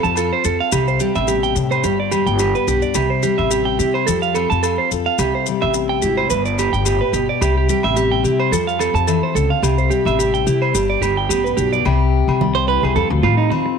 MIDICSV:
0, 0, Header, 1, 6, 480
1, 0, Start_track
1, 0, Key_signature, 0, "major"
1, 0, Tempo, 556070
1, 625, Time_signature, 4, 2, 24, 8
1, 11900, End_track
2, 0, Start_track
2, 0, Title_t, "Clean electric guitar"
2, 0, Program_c, 0, 27
2, 28, Note_on_c, 0, 81, 68
2, 129, Note_off_c, 0, 81, 0
2, 148, Note_on_c, 0, 69, 72
2, 264, Note_off_c, 0, 69, 0
2, 282, Note_on_c, 0, 72, 64
2, 377, Note_off_c, 0, 72, 0
2, 389, Note_on_c, 0, 69, 62
2, 505, Note_off_c, 0, 69, 0
2, 522, Note_on_c, 0, 77, 63
2, 618, Note_off_c, 0, 77, 0
2, 624, Note_on_c, 0, 67, 75
2, 743, Note_off_c, 0, 67, 0
2, 758, Note_on_c, 0, 72, 64
2, 856, Note_off_c, 0, 72, 0
2, 869, Note_on_c, 0, 67, 65
2, 986, Note_off_c, 0, 67, 0
2, 997, Note_on_c, 0, 76, 62
2, 1096, Note_off_c, 0, 76, 0
2, 1104, Note_on_c, 0, 67, 68
2, 1224, Note_off_c, 0, 67, 0
2, 1237, Note_on_c, 0, 79, 65
2, 1336, Note_off_c, 0, 79, 0
2, 1477, Note_on_c, 0, 72, 60
2, 1577, Note_off_c, 0, 72, 0
2, 1587, Note_on_c, 0, 67, 70
2, 1706, Note_off_c, 0, 67, 0
2, 1723, Note_on_c, 0, 74, 59
2, 1821, Note_off_c, 0, 74, 0
2, 1825, Note_on_c, 0, 67, 67
2, 1946, Note_off_c, 0, 67, 0
2, 1955, Note_on_c, 0, 79, 63
2, 2057, Note_off_c, 0, 79, 0
2, 2069, Note_on_c, 0, 67, 70
2, 2188, Note_off_c, 0, 67, 0
2, 2201, Note_on_c, 0, 71, 59
2, 2300, Note_off_c, 0, 71, 0
2, 2313, Note_on_c, 0, 67, 66
2, 2431, Note_off_c, 0, 67, 0
2, 2436, Note_on_c, 0, 74, 59
2, 2538, Note_off_c, 0, 74, 0
2, 2548, Note_on_c, 0, 67, 74
2, 2668, Note_off_c, 0, 67, 0
2, 2676, Note_on_c, 0, 72, 59
2, 2778, Note_off_c, 0, 72, 0
2, 2787, Note_on_c, 0, 67, 64
2, 2908, Note_off_c, 0, 67, 0
2, 2918, Note_on_c, 0, 76, 62
2, 3019, Note_off_c, 0, 76, 0
2, 3028, Note_on_c, 0, 67, 71
2, 3149, Note_off_c, 0, 67, 0
2, 3154, Note_on_c, 0, 79, 64
2, 3257, Note_off_c, 0, 79, 0
2, 3272, Note_on_c, 0, 67, 66
2, 3391, Note_off_c, 0, 67, 0
2, 3402, Note_on_c, 0, 72, 61
2, 3502, Note_off_c, 0, 72, 0
2, 3509, Note_on_c, 0, 69, 73
2, 3630, Note_off_c, 0, 69, 0
2, 3644, Note_on_c, 0, 77, 65
2, 3743, Note_off_c, 0, 77, 0
2, 3750, Note_on_c, 0, 69, 69
2, 3871, Note_off_c, 0, 69, 0
2, 3883, Note_on_c, 0, 81, 66
2, 3983, Note_off_c, 0, 81, 0
2, 3995, Note_on_c, 0, 69, 66
2, 4113, Note_off_c, 0, 69, 0
2, 4127, Note_on_c, 0, 72, 63
2, 4225, Note_off_c, 0, 72, 0
2, 4369, Note_on_c, 0, 77, 63
2, 4466, Note_off_c, 0, 77, 0
2, 4480, Note_on_c, 0, 67, 75
2, 4597, Note_off_c, 0, 67, 0
2, 4616, Note_on_c, 0, 72, 60
2, 4711, Note_off_c, 0, 72, 0
2, 4850, Note_on_c, 0, 76, 63
2, 4947, Note_off_c, 0, 76, 0
2, 5087, Note_on_c, 0, 79, 66
2, 5186, Note_off_c, 0, 79, 0
2, 5199, Note_on_c, 0, 67, 63
2, 5316, Note_off_c, 0, 67, 0
2, 5329, Note_on_c, 0, 72, 59
2, 5427, Note_off_c, 0, 72, 0
2, 5439, Note_on_c, 0, 71, 71
2, 5557, Note_off_c, 0, 71, 0
2, 5572, Note_on_c, 0, 74, 64
2, 5669, Note_off_c, 0, 74, 0
2, 5689, Note_on_c, 0, 67, 69
2, 5802, Note_off_c, 0, 67, 0
2, 5808, Note_on_c, 0, 79, 69
2, 5907, Note_off_c, 0, 79, 0
2, 5921, Note_on_c, 0, 67, 70
2, 6038, Note_off_c, 0, 67, 0
2, 6050, Note_on_c, 0, 71, 64
2, 6148, Note_off_c, 0, 71, 0
2, 6159, Note_on_c, 0, 67, 64
2, 6276, Note_off_c, 0, 67, 0
2, 6295, Note_on_c, 0, 74, 64
2, 6390, Note_off_c, 0, 74, 0
2, 6403, Note_on_c, 0, 67, 75
2, 6518, Note_off_c, 0, 67, 0
2, 6538, Note_on_c, 0, 67, 65
2, 6632, Note_off_c, 0, 67, 0
2, 6645, Note_on_c, 0, 67, 68
2, 6760, Note_off_c, 0, 67, 0
2, 6769, Note_on_c, 0, 76, 67
2, 6867, Note_off_c, 0, 76, 0
2, 6876, Note_on_c, 0, 67, 67
2, 6995, Note_off_c, 0, 67, 0
2, 7005, Note_on_c, 0, 79, 69
2, 7105, Note_off_c, 0, 79, 0
2, 7116, Note_on_c, 0, 67, 59
2, 7235, Note_off_c, 0, 67, 0
2, 7247, Note_on_c, 0, 72, 62
2, 7346, Note_off_c, 0, 72, 0
2, 7357, Note_on_c, 0, 69, 73
2, 7475, Note_off_c, 0, 69, 0
2, 7487, Note_on_c, 0, 77, 67
2, 7586, Note_off_c, 0, 77, 0
2, 7598, Note_on_c, 0, 69, 72
2, 7716, Note_off_c, 0, 69, 0
2, 7723, Note_on_c, 0, 81, 68
2, 7823, Note_off_c, 0, 81, 0
2, 7833, Note_on_c, 0, 69, 67
2, 7953, Note_off_c, 0, 69, 0
2, 7968, Note_on_c, 0, 72, 64
2, 8066, Note_off_c, 0, 72, 0
2, 8073, Note_on_c, 0, 69, 63
2, 8193, Note_off_c, 0, 69, 0
2, 8203, Note_on_c, 0, 77, 64
2, 8303, Note_off_c, 0, 77, 0
2, 8314, Note_on_c, 0, 67, 77
2, 8433, Note_off_c, 0, 67, 0
2, 8444, Note_on_c, 0, 72, 61
2, 8544, Note_off_c, 0, 72, 0
2, 8549, Note_on_c, 0, 67, 66
2, 8670, Note_off_c, 0, 67, 0
2, 8687, Note_on_c, 0, 76, 65
2, 8785, Note_off_c, 0, 76, 0
2, 8794, Note_on_c, 0, 67, 70
2, 8913, Note_off_c, 0, 67, 0
2, 8924, Note_on_c, 0, 79, 64
2, 9023, Note_off_c, 0, 79, 0
2, 9035, Note_on_c, 0, 67, 62
2, 9153, Note_off_c, 0, 67, 0
2, 9164, Note_on_c, 0, 72, 62
2, 9263, Note_off_c, 0, 72, 0
2, 9277, Note_on_c, 0, 67, 69
2, 9394, Note_off_c, 0, 67, 0
2, 9405, Note_on_c, 0, 74, 66
2, 9503, Note_off_c, 0, 74, 0
2, 9510, Note_on_c, 0, 67, 68
2, 9630, Note_off_c, 0, 67, 0
2, 9645, Note_on_c, 0, 79, 63
2, 9743, Note_off_c, 0, 79, 0
2, 9748, Note_on_c, 0, 67, 71
2, 9868, Note_off_c, 0, 67, 0
2, 9878, Note_on_c, 0, 71, 59
2, 9979, Note_off_c, 0, 71, 0
2, 9986, Note_on_c, 0, 67, 60
2, 10107, Note_off_c, 0, 67, 0
2, 10121, Note_on_c, 0, 74, 61
2, 10220, Note_off_c, 0, 74, 0
2, 10832, Note_on_c, 0, 72, 76
2, 10942, Note_off_c, 0, 72, 0
2, 10946, Note_on_c, 0, 71, 87
2, 11075, Note_off_c, 0, 71, 0
2, 11077, Note_on_c, 0, 68, 71
2, 11182, Note_off_c, 0, 68, 0
2, 11186, Note_on_c, 0, 69, 88
2, 11313, Note_off_c, 0, 69, 0
2, 11423, Note_on_c, 0, 65, 85
2, 11541, Note_off_c, 0, 65, 0
2, 11545, Note_on_c, 0, 63, 76
2, 11657, Note_off_c, 0, 63, 0
2, 11900, End_track
3, 0, Start_track
3, 0, Title_t, "Steel-string acoustic guitar"
3, 0, Program_c, 1, 25
3, 0, Note_on_c, 1, 53, 63
3, 0, Note_on_c, 1, 60, 58
3, 148, Note_on_c, 1, 65, 53
3, 388, Note_on_c, 1, 69, 54
3, 601, Note_off_c, 1, 65, 0
3, 601, Note_off_c, 1, 69, 0
3, 602, Note_off_c, 1, 60, 0
3, 627, Note_on_c, 1, 48, 66
3, 630, Note_off_c, 1, 53, 0
3, 873, Note_on_c, 1, 55, 55
3, 1104, Note_on_c, 1, 47, 56
3, 1340, Note_off_c, 1, 47, 0
3, 1343, Note_on_c, 1, 45, 56
3, 1566, Note_off_c, 1, 55, 0
3, 1587, Note_off_c, 1, 45, 0
3, 1590, Note_off_c, 1, 48, 0
3, 1593, Note_on_c, 1, 43, 63
3, 1833, Note_on_c, 1, 55, 56
3, 2084, Note_on_c, 1, 59, 54
3, 2313, Note_on_c, 1, 62, 49
3, 2528, Note_off_c, 1, 55, 0
3, 2532, Note_off_c, 1, 59, 0
3, 2553, Note_off_c, 1, 62, 0
3, 2554, Note_off_c, 1, 43, 0
3, 2554, Note_on_c, 1, 48, 61
3, 2796, Note_on_c, 1, 55, 57
3, 3044, Note_on_c, 1, 60, 55
3, 3284, Note_on_c, 1, 64, 56
3, 3490, Note_off_c, 1, 55, 0
3, 3493, Note_off_c, 1, 64, 0
3, 3494, Note_off_c, 1, 60, 0
3, 3516, Note_off_c, 1, 48, 0
3, 3524, Note_on_c, 1, 53, 61
3, 3763, Note_on_c, 1, 60, 53
3, 4015, Note_on_c, 1, 65, 52
3, 4246, Note_on_c, 1, 69, 56
3, 4454, Note_off_c, 1, 60, 0
3, 4455, Note_off_c, 1, 69, 0
3, 4460, Note_off_c, 1, 65, 0
3, 4481, Note_off_c, 1, 53, 0
3, 4488, Note_on_c, 1, 48, 63
3, 4733, Note_on_c, 1, 55, 53
3, 4975, Note_on_c, 1, 60, 52
3, 5222, Note_on_c, 1, 64, 52
3, 5419, Note_off_c, 1, 55, 0
3, 5420, Note_off_c, 1, 60, 0
3, 5424, Note_off_c, 1, 64, 0
3, 5443, Note_off_c, 1, 48, 0
3, 5456, Note_on_c, 1, 43, 62
3, 5694, Note_on_c, 1, 55, 54
3, 5924, Note_off_c, 1, 43, 0
3, 5927, Note_on_c, 1, 45, 57
3, 6163, Note_off_c, 1, 45, 0
3, 6169, Note_on_c, 1, 47, 54
3, 6380, Note_off_c, 1, 55, 0
3, 6403, Note_off_c, 1, 47, 0
3, 6406, Note_on_c, 1, 48, 65
3, 6639, Note_on_c, 1, 55, 57
3, 6882, Note_on_c, 1, 60, 52
3, 7125, Note_on_c, 1, 64, 56
3, 7332, Note_off_c, 1, 55, 0
3, 7333, Note_off_c, 1, 60, 0
3, 7335, Note_off_c, 1, 64, 0
3, 7358, Note_on_c, 1, 53, 66
3, 7362, Note_off_c, 1, 48, 0
3, 7599, Note_on_c, 1, 60, 53
3, 7835, Note_on_c, 1, 52, 58
3, 8071, Note_off_c, 1, 52, 0
3, 8075, Note_on_c, 1, 50, 54
3, 8291, Note_off_c, 1, 60, 0
3, 8314, Note_off_c, 1, 50, 0
3, 8317, Note_off_c, 1, 53, 0
3, 8318, Note_on_c, 1, 48, 71
3, 8556, Note_on_c, 1, 55, 53
3, 8805, Note_on_c, 1, 60, 54
3, 9049, Note_on_c, 1, 64, 54
3, 9249, Note_off_c, 1, 55, 0
3, 9253, Note_off_c, 1, 60, 0
3, 9255, Note_off_c, 1, 64, 0
3, 9276, Note_off_c, 1, 48, 0
3, 9285, Note_on_c, 1, 43, 65
3, 9771, Note_on_c, 1, 59, 52
3, 10001, Note_on_c, 1, 62, 48
3, 10215, Note_off_c, 1, 59, 0
3, 10231, Note_on_c, 1, 48, 71
3, 10236, Note_off_c, 1, 62, 0
3, 10237, Note_on_c, 1, 67, 65
3, 10238, Note_off_c, 1, 43, 0
3, 10713, Note_on_c, 1, 55, 59
3, 10959, Note_on_c, 1, 64, 54
3, 11164, Note_off_c, 1, 55, 0
3, 11167, Note_off_c, 1, 64, 0
3, 11186, Note_on_c, 1, 53, 66
3, 11188, Note_off_c, 1, 48, 0
3, 11191, Note_off_c, 1, 67, 0
3, 11193, Note_on_c, 1, 60, 54
3, 11198, Note_on_c, 1, 65, 60
3, 11656, Note_off_c, 1, 60, 0
3, 11666, Note_on_c, 1, 60, 64
3, 11900, Note_off_c, 1, 53, 0
3, 11900, Note_off_c, 1, 60, 0
3, 11900, Note_off_c, 1, 65, 0
3, 11900, End_track
4, 0, Start_track
4, 0, Title_t, "Upright bass"
4, 0, Program_c, 2, 32
4, 34, Note_on_c, 2, 41, 78
4, 257, Note_off_c, 2, 41, 0
4, 385, Note_on_c, 2, 41, 76
4, 506, Note_off_c, 2, 41, 0
4, 624, Note_on_c, 2, 36, 86
4, 848, Note_off_c, 2, 36, 0
4, 996, Note_on_c, 2, 33, 86
4, 1321, Note_off_c, 2, 33, 0
4, 1346, Note_on_c, 2, 48, 73
4, 1570, Note_off_c, 2, 48, 0
4, 1584, Note_on_c, 2, 31, 75
4, 1932, Note_off_c, 2, 31, 0
4, 1955, Note_on_c, 2, 31, 84
4, 2181, Note_off_c, 2, 31, 0
4, 2308, Note_on_c, 2, 35, 81
4, 2432, Note_off_c, 2, 35, 0
4, 2547, Note_on_c, 2, 36, 91
4, 2772, Note_off_c, 2, 36, 0
4, 2923, Note_on_c, 2, 33, 87
4, 3248, Note_off_c, 2, 33, 0
4, 3276, Note_on_c, 2, 48, 77
4, 3498, Note_off_c, 2, 48, 0
4, 3521, Note_on_c, 2, 41, 78
4, 3863, Note_off_c, 2, 41, 0
4, 3893, Note_on_c, 2, 41, 82
4, 4113, Note_off_c, 2, 41, 0
4, 4243, Note_on_c, 2, 41, 77
4, 4361, Note_off_c, 2, 41, 0
4, 4476, Note_on_c, 2, 36, 87
4, 4699, Note_off_c, 2, 36, 0
4, 4857, Note_on_c, 2, 33, 83
4, 5176, Note_off_c, 2, 33, 0
4, 5202, Note_on_c, 2, 32, 75
4, 5422, Note_off_c, 2, 32, 0
4, 5443, Note_on_c, 2, 31, 76
4, 5785, Note_off_c, 2, 31, 0
4, 5811, Note_on_c, 2, 31, 89
4, 6033, Note_off_c, 2, 31, 0
4, 6151, Note_on_c, 2, 31, 77
4, 6276, Note_off_c, 2, 31, 0
4, 6400, Note_on_c, 2, 36, 93
4, 6621, Note_off_c, 2, 36, 0
4, 6769, Note_on_c, 2, 33, 86
4, 7092, Note_off_c, 2, 33, 0
4, 7113, Note_on_c, 2, 48, 76
4, 7337, Note_off_c, 2, 48, 0
4, 7347, Note_on_c, 2, 41, 76
4, 7696, Note_off_c, 2, 41, 0
4, 7715, Note_on_c, 2, 41, 86
4, 7944, Note_off_c, 2, 41, 0
4, 8069, Note_on_c, 2, 37, 83
4, 8194, Note_off_c, 2, 37, 0
4, 8307, Note_on_c, 2, 36, 93
4, 8534, Note_off_c, 2, 36, 0
4, 8678, Note_on_c, 2, 33, 86
4, 9005, Note_off_c, 2, 33, 0
4, 9036, Note_on_c, 2, 48, 79
4, 9258, Note_off_c, 2, 48, 0
4, 9274, Note_on_c, 2, 31, 76
4, 9496, Note_off_c, 2, 31, 0
4, 9505, Note_on_c, 2, 31, 74
4, 9725, Note_off_c, 2, 31, 0
4, 9752, Note_on_c, 2, 33, 72
4, 9968, Note_off_c, 2, 33, 0
4, 9990, Note_on_c, 2, 35, 75
4, 10207, Note_off_c, 2, 35, 0
4, 10234, Note_on_c, 2, 36, 82
4, 10576, Note_off_c, 2, 36, 0
4, 10597, Note_on_c, 2, 36, 81
4, 11043, Note_off_c, 2, 36, 0
4, 11073, Note_on_c, 2, 36, 76
4, 11177, Note_off_c, 2, 36, 0
4, 11183, Note_on_c, 2, 41, 90
4, 11307, Note_off_c, 2, 41, 0
4, 11311, Note_on_c, 2, 38, 99
4, 11420, Note_on_c, 2, 45, 83
4, 11433, Note_off_c, 2, 38, 0
4, 11645, Note_off_c, 2, 45, 0
4, 11900, End_track
5, 0, Start_track
5, 0, Title_t, "Muted clean electric guitar strokes"
5, 1341, Note_on_c, 9, 29, 63
5, 1427, Note_off_c, 9, 29, 0
5, 4958, Note_on_c, 9, 29, 68
5, 5044, Note_off_c, 9, 29, 0
5, 11316, Note_on_c, 9, 29, 80
5, 11403, Note_off_c, 9, 29, 0
5, 11657, Note_on_c, 9, 29, 88
5, 11743, Note_off_c, 9, 29, 0
5, 11788, Note_on_c, 9, 29, 48
5, 11874, Note_off_c, 9, 29, 0
5, 11900, End_track
6, 0, Start_track
6, 0, Title_t, "Drums"
6, 37, Note_on_c, 9, 70, 25
6, 123, Note_off_c, 9, 70, 0
6, 134, Note_on_c, 9, 68, 55
6, 145, Note_on_c, 9, 70, 85
6, 221, Note_off_c, 9, 68, 0
6, 231, Note_off_c, 9, 70, 0
6, 382, Note_on_c, 9, 70, 70
6, 469, Note_off_c, 9, 70, 0
6, 621, Note_on_c, 9, 70, 86
6, 626, Note_on_c, 9, 68, 60
6, 707, Note_off_c, 9, 70, 0
6, 712, Note_off_c, 9, 68, 0
6, 757, Note_on_c, 9, 70, 24
6, 844, Note_off_c, 9, 70, 0
6, 861, Note_on_c, 9, 70, 66
6, 948, Note_off_c, 9, 70, 0
6, 996, Note_on_c, 9, 70, 26
6, 998, Note_on_c, 9, 68, 54
6, 1082, Note_off_c, 9, 70, 0
6, 1084, Note_off_c, 9, 68, 0
6, 1102, Note_on_c, 9, 70, 81
6, 1189, Note_off_c, 9, 70, 0
6, 1237, Note_on_c, 9, 70, 24
6, 1323, Note_off_c, 9, 70, 0
6, 1345, Note_on_c, 9, 70, 65
6, 1431, Note_off_c, 9, 70, 0
6, 1481, Note_on_c, 9, 70, 25
6, 1484, Note_on_c, 9, 68, 56
6, 1568, Note_off_c, 9, 70, 0
6, 1570, Note_off_c, 9, 68, 0
6, 1585, Note_on_c, 9, 70, 85
6, 1671, Note_off_c, 9, 70, 0
6, 1827, Note_on_c, 9, 70, 63
6, 1829, Note_on_c, 9, 68, 58
6, 1914, Note_off_c, 9, 70, 0
6, 1916, Note_off_c, 9, 68, 0
6, 1959, Note_on_c, 9, 70, 24
6, 2045, Note_off_c, 9, 70, 0
6, 2062, Note_on_c, 9, 70, 83
6, 2072, Note_on_c, 9, 68, 54
6, 2149, Note_off_c, 9, 70, 0
6, 2159, Note_off_c, 9, 68, 0
6, 2202, Note_on_c, 9, 70, 25
6, 2289, Note_off_c, 9, 70, 0
6, 2311, Note_on_c, 9, 70, 69
6, 2397, Note_off_c, 9, 70, 0
6, 2435, Note_on_c, 9, 70, 27
6, 2521, Note_off_c, 9, 70, 0
6, 2541, Note_on_c, 9, 70, 81
6, 2546, Note_on_c, 9, 68, 59
6, 2627, Note_off_c, 9, 70, 0
6, 2632, Note_off_c, 9, 68, 0
6, 2785, Note_on_c, 9, 70, 62
6, 2871, Note_off_c, 9, 70, 0
6, 2925, Note_on_c, 9, 68, 58
6, 3011, Note_off_c, 9, 68, 0
6, 3029, Note_on_c, 9, 70, 85
6, 3116, Note_off_c, 9, 70, 0
6, 3276, Note_on_c, 9, 70, 64
6, 3362, Note_off_c, 9, 70, 0
6, 3410, Note_on_c, 9, 68, 56
6, 3497, Note_off_c, 9, 68, 0
6, 3517, Note_on_c, 9, 70, 90
6, 3604, Note_off_c, 9, 70, 0
6, 3649, Note_on_c, 9, 70, 23
6, 3736, Note_off_c, 9, 70, 0
6, 3755, Note_on_c, 9, 70, 63
6, 3758, Note_on_c, 9, 68, 60
6, 3842, Note_off_c, 9, 70, 0
6, 3844, Note_off_c, 9, 68, 0
6, 3898, Note_on_c, 9, 70, 26
6, 3984, Note_off_c, 9, 70, 0
6, 3999, Note_on_c, 9, 70, 84
6, 4001, Note_on_c, 9, 68, 55
6, 4085, Note_off_c, 9, 70, 0
6, 4087, Note_off_c, 9, 68, 0
6, 4242, Note_on_c, 9, 70, 66
6, 4328, Note_off_c, 9, 70, 0
6, 4475, Note_on_c, 9, 70, 85
6, 4479, Note_on_c, 9, 68, 61
6, 4562, Note_off_c, 9, 70, 0
6, 4566, Note_off_c, 9, 68, 0
6, 4715, Note_on_c, 9, 70, 64
6, 4801, Note_off_c, 9, 70, 0
6, 4846, Note_on_c, 9, 68, 57
6, 4932, Note_off_c, 9, 68, 0
6, 4953, Note_on_c, 9, 70, 83
6, 5040, Note_off_c, 9, 70, 0
6, 5196, Note_on_c, 9, 70, 61
6, 5283, Note_off_c, 9, 70, 0
6, 5330, Note_on_c, 9, 68, 58
6, 5417, Note_off_c, 9, 68, 0
6, 5439, Note_on_c, 9, 70, 85
6, 5525, Note_off_c, 9, 70, 0
6, 5571, Note_on_c, 9, 70, 24
6, 5657, Note_off_c, 9, 70, 0
6, 5684, Note_on_c, 9, 70, 60
6, 5688, Note_on_c, 9, 68, 61
6, 5770, Note_off_c, 9, 70, 0
6, 5774, Note_off_c, 9, 68, 0
6, 5816, Note_on_c, 9, 70, 25
6, 5903, Note_off_c, 9, 70, 0
6, 5917, Note_on_c, 9, 68, 58
6, 5919, Note_on_c, 9, 70, 76
6, 6003, Note_off_c, 9, 68, 0
6, 6005, Note_off_c, 9, 70, 0
6, 6160, Note_on_c, 9, 70, 64
6, 6246, Note_off_c, 9, 70, 0
6, 6398, Note_on_c, 9, 68, 60
6, 6405, Note_on_c, 9, 70, 78
6, 6485, Note_off_c, 9, 68, 0
6, 6491, Note_off_c, 9, 70, 0
6, 6638, Note_on_c, 9, 70, 63
6, 6725, Note_off_c, 9, 70, 0
6, 6761, Note_on_c, 9, 68, 60
6, 6847, Note_off_c, 9, 68, 0
6, 6875, Note_on_c, 9, 70, 78
6, 6961, Note_off_c, 9, 70, 0
6, 7118, Note_on_c, 9, 70, 57
6, 7204, Note_off_c, 9, 70, 0
6, 7246, Note_on_c, 9, 68, 58
6, 7333, Note_off_c, 9, 68, 0
6, 7364, Note_on_c, 9, 70, 75
6, 7450, Note_off_c, 9, 70, 0
6, 7498, Note_on_c, 9, 70, 21
6, 7584, Note_off_c, 9, 70, 0
6, 7590, Note_on_c, 9, 68, 58
6, 7602, Note_on_c, 9, 70, 58
6, 7676, Note_off_c, 9, 68, 0
6, 7689, Note_off_c, 9, 70, 0
6, 7730, Note_on_c, 9, 70, 22
6, 7817, Note_off_c, 9, 70, 0
6, 7835, Note_on_c, 9, 70, 70
6, 7840, Note_on_c, 9, 68, 56
6, 7921, Note_off_c, 9, 70, 0
6, 7926, Note_off_c, 9, 68, 0
6, 8081, Note_on_c, 9, 70, 54
6, 8168, Note_off_c, 9, 70, 0
6, 8316, Note_on_c, 9, 68, 62
6, 8318, Note_on_c, 9, 70, 72
6, 8402, Note_off_c, 9, 68, 0
6, 8404, Note_off_c, 9, 70, 0
6, 8443, Note_on_c, 9, 70, 20
6, 8530, Note_off_c, 9, 70, 0
6, 8554, Note_on_c, 9, 70, 53
6, 8640, Note_off_c, 9, 70, 0
6, 8692, Note_on_c, 9, 68, 60
6, 8695, Note_on_c, 9, 70, 21
6, 8778, Note_off_c, 9, 68, 0
6, 8781, Note_off_c, 9, 70, 0
6, 8802, Note_on_c, 9, 70, 70
6, 8889, Note_off_c, 9, 70, 0
6, 8929, Note_on_c, 9, 70, 22
6, 9015, Note_off_c, 9, 70, 0
6, 9037, Note_on_c, 9, 70, 60
6, 9123, Note_off_c, 9, 70, 0
6, 9168, Note_on_c, 9, 68, 59
6, 9255, Note_off_c, 9, 68, 0
6, 9277, Note_on_c, 9, 70, 80
6, 9363, Note_off_c, 9, 70, 0
6, 9517, Note_on_c, 9, 70, 58
6, 9519, Note_on_c, 9, 68, 62
6, 9603, Note_off_c, 9, 70, 0
6, 9605, Note_off_c, 9, 68, 0
6, 9759, Note_on_c, 9, 68, 57
6, 9760, Note_on_c, 9, 70, 80
6, 9845, Note_off_c, 9, 68, 0
6, 9846, Note_off_c, 9, 70, 0
6, 9895, Note_on_c, 9, 70, 23
6, 9981, Note_off_c, 9, 70, 0
6, 9992, Note_on_c, 9, 70, 70
6, 10078, Note_off_c, 9, 70, 0
6, 10125, Note_on_c, 9, 70, 24
6, 10211, Note_off_c, 9, 70, 0
6, 10233, Note_on_c, 9, 62, 30
6, 10234, Note_on_c, 9, 68, 66
6, 10319, Note_off_c, 9, 62, 0
6, 10321, Note_off_c, 9, 68, 0
6, 10606, Note_on_c, 9, 68, 66
6, 10693, Note_off_c, 9, 68, 0
6, 10713, Note_on_c, 9, 63, 89
6, 10799, Note_off_c, 9, 63, 0
6, 11088, Note_on_c, 9, 68, 60
6, 11175, Note_off_c, 9, 68, 0
6, 11188, Note_on_c, 9, 62, 31
6, 11274, Note_off_c, 9, 62, 0
6, 11424, Note_on_c, 9, 62, 30
6, 11424, Note_on_c, 9, 63, 78
6, 11431, Note_on_c, 9, 68, 65
6, 11511, Note_off_c, 9, 62, 0
6, 11511, Note_off_c, 9, 63, 0
6, 11517, Note_off_c, 9, 68, 0
6, 11663, Note_on_c, 9, 63, 73
6, 11668, Note_on_c, 9, 68, 62
6, 11749, Note_off_c, 9, 63, 0
6, 11755, Note_off_c, 9, 68, 0
6, 11900, End_track
0, 0, End_of_file